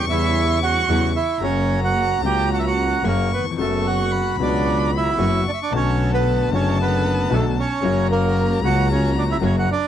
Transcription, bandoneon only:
0.10 E4 E5
0.63 F#4 F#5
1.16 E4 E5
1.43 C#4 C#5
1.84 F#4 F#5
2.26 G4 G5
2.53 F#4 F#5
2.59 E5
2.67 F#4 F#5
3.08 A#3 A#4
3.34 B3 B4
3.60 A3 A4
3.87 F#4 F#5
4.42 D4 D5
4.97 E4 E5
5.48 D4 D5
5.54 E5
5.62 D4 D5
5.76 C#4 C#5
6.13 B3 B4
6.54 C#4 C#5
6.82 B3 B4
7.33 A3 A4
7.59 C#4 C#5
8.11 A#3 A#4
8.64 F#4 F#5
8.91 C#4 C#5
9.18 D4 D5
9.31 E4 E5
9.45 C#4 C#5
9.58 F#4 F#5
9.71 D4 D5

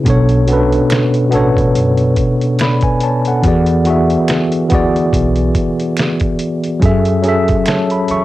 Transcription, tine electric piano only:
0.04 B2 B3 D4
0.08 A4 C#5
0.47 B2 B3 C#4
0.51 A4 B4
0.56 D4
1.29 B2 B3 D4
1.34 A4 C#5
2.61 D5 B5
2.83 B4 G#5
3.03 C#5 A5
3.28 A4 F#5
3.42 E3 B3 F#4
3.47 G#4 D5
3.84 E3 B3 F#4
3.88 G#4 E5
4.68 E3 B3 F#4
4.73 G#4 D5
6.80 F#3 C#4 G#4
6.84 A4 E5
7.22 F#3 C#4 G#4
7.27 A4 E5
7.68 C#5 A5
7.91 B5
8.11 E5 C#6

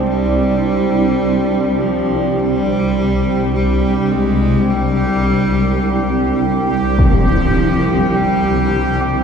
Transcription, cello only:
0.07 G3
1.80 F3
2.40 G3
3.54 G3
4.11 G#3
4.70 G3
7.00 F3
8.16 G3

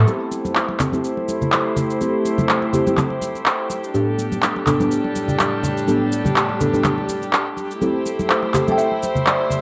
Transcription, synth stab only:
0.07 C4 E4 G4 A4
0.80 C4 E4 G4 A4
0.93 C4 E4 G4 A4
2.01 C4 E4 G4 A4
2.73 C4 E4 G4 A4
2.86 C4 E4 G4 A4
3.94 A2 B3 D4 G4 A4
4.67 A2 B3 D4 G4 A4
4.80 A2 B3 D4 G4 A4
5.88 A2 B3 D4 G4 A4
6.60 A2 B3 D4 G4 A4
6.74 A2 B3 D4 G4 A4
7.81 C4 E4 G4 A4
8.54 C4 E4 G4 A4
8.67 C4 E4 G4 A4

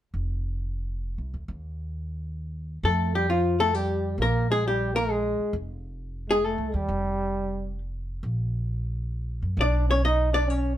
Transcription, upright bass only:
0.14 F1
1.18 C2
1.34 D2
1.48 D#2
2.83 F2
4.18 A#1
5.40 muted upright bass stroke
5.53 F1
6.58 C2
6.74 D#2
6.89 F1
8.23 A#1
9.42 F#2
9.57 B1

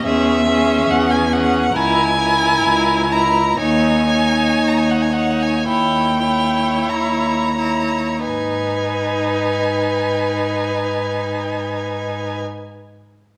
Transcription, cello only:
0.04 E2
0.89 E2
1.75 C#2
2.64 C#2
3.59 D#2
4.59 D#2
5.69 D#2
6.89 D#2
8.27 G#2

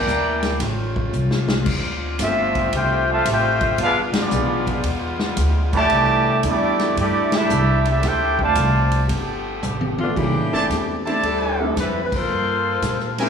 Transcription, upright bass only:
0.07 D2
0.60 A1
1.13 C2
1.66 D2
2.19 G1
2.73 C2
3.25 A1
3.78 G1
4.15 muted upright bass stroke
4.32 B1
4.84 E2
5.37 D2
5.90 C2
6.44 E2
6.97 G2
7.51 C2
8.03 D2
8.56 C2
9.09 G1
9.63 A1
10.16 C2
10.35 A1
10.52 G1
10.70 E2
11.23 D2
11.76 F2
12.29 G2
12.82 A#2

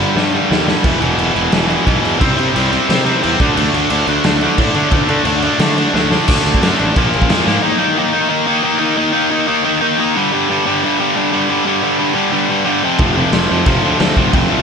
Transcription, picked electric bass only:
0.16 G2
0.51 D#2
0.85 E1
1.02 E1
1.18 E1
1.36 E1
1.53 E1
1.87 B1
2.06 E2
2.22 C2
2.40 C3
2.56 C2
2.89 C3
3.25 E2
3.40 D2
3.58 D2
3.74 D2
3.91 D2
4.07 D2
4.25 D2
4.58 A2
4.75 D3
4.92 D2
5.10 D3
5.25 D2
5.59 D3
5.94 D2
6.29 D2
6.46 D2
6.62 F#2
6.80 A1
6.97 A#1
7.15 A#1
7.30 F2
7.47 G#2
12.99 F1
13.35 F1
13.51 F2
13.66 F1
13.83 D2
14.00 D2
14.17 F1
14.34 F1
14.52 C2

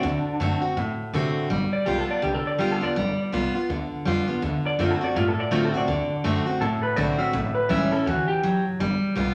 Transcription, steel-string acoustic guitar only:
0.03 D3
0.40 D3 A3 C4 F#4
0.61 C4 F#4
0.77 A2
1.14 D3 A3 C4 F#4
1.50 G3
1.86 G3 B3 F4
2.22 D3
2.58 G3 B3 F4
2.81 B3 F4
2.96 G3
3.32 G3 B3 F4
3.55 B3 F4
3.70 D3
4.05 G3 B3 F4
4.28 B3 F4
4.42 D3
4.79 D3 A3 C4 F#4
5.01 C4 F#4
5.16 A2
5.51 D3 A3 C4 F#4
5.74 C4 F#4
5.88 D3
6.24 D3 A3 C4 F#4
6.46 C4 F#4
6.61 A2
6.96 D3 A3 C4 F#4
7.19 C4 F#4
7.33 A2
7.69 E3 G3 C#4 E4
7.91 C#4 E4
8.07 E3
8.43 F#3
8.80 G3
9.15 G3 B3 F4

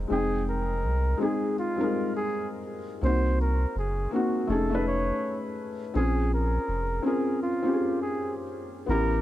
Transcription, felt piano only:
Already playing: G#3 C4 D#4 G5
0.07 G#3 C4 D#4
0.12 G5
1.17 G#3 C4 D#4
1.22 G#4
1.76 G3 C4 D#4
1.81 G#3 A#4
3.01 A#3 C4 D#4
3.06 F#4
4.11 A#3 C4 D#4
4.16 F#4
4.47 A3 C#4 D#4
4.52 G#4
4.70 A3 C#4 D#4
4.75 B4
5.94 C4 C#4 F4
5.98 G#4
7.03 C4 C#4 F4
7.07 A#4
7.62 C4 C#4 F4
7.67 G4
7.73 G#4
8.86 B3 C#4 E4
8.91 G4

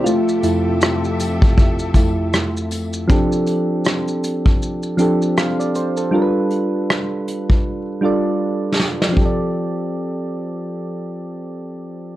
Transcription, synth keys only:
0.04 A3 F4
0.43 F2 A3 E4
1.95 F2 A3 E4
3.08 F3 C4 D4 G4
3.12 A4
4.97 F3 C4 D4 G4
5.02 A4
5.38 F5
5.60 D5
5.76 C5
5.97 A4
6.11 G3 D4 F4 A4
6.15 A#4
6.22 B4
8.01 G3 D4 F4 A4
8.05 D5
9.09 F3
9.13 C4
9.17 G4
9.21 A4
9.26 D5

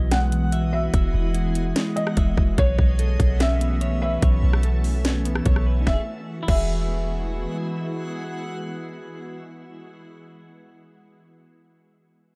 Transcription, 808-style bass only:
Already playing: B1
0.94 E1
1.14 E1
2.17 E1
2.37 E1
2.58 B1
2.79 B1
3.20 B1
4.23 B1
4.43 B1
5.46 B1
5.87 E1
6.48 E1

